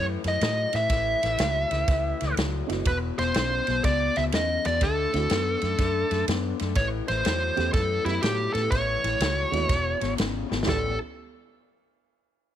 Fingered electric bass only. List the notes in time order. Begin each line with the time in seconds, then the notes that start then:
Already playing: F#2
0.25 F#2
0.42 A2
0.74 A2
0.90 A1
1.23 A1
1.40 C#2
1.71 C#2
1.88 C#2
2.22 C#2
2.37 C#2
2.69 F#1
2.86 E1
3.18 E1
3.36 B1
3.68 B1
3.85 C#2
4.17 C#2
4.33 E2
4.66 E2
4.82 D2
5.14 D2
5.31 F#2
5.63 F#2
5.79 F#2
6.11 F#2
6.28 F#2
6.61 F#2
6.76 A1
7.09 A1
7.26 E2
7.58 E2
7.74 F#2
8.05 F#2
8.23 A2
8.55 A2
8.72 A1
9.04 A1
9.20 C#2
9.52 D#2
9.69 E1
10.02 G#1
10.20 G#1
10.51 G#1
10.68 A1